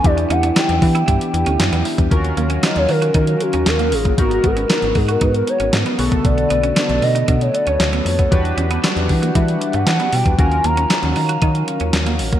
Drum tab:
HH |xxxxxxoxxxxxxxox|xxxxxxoxxxxxxxox|xxxxxxoxxxxxxxox|xxxxxxoxxxxxxxox|
CP |----x-------x---|----x-------x---|----x-------x---|----x-------x---|
SD |----o-------o---|----o-------o---|----o-------o---|----o-------o---|
BD |o-----o-o------o|o-------o------o|o-o---o-o------o|o-------o------o|

HH |xxxxxxoxxxxxxxox|xxxxxxoxxxxxxxox|
CP |----x-------x---|----x-------x---|
SD |----o-------o---|----o-------o---|
BD |o-----o-o------o|o-------o------o|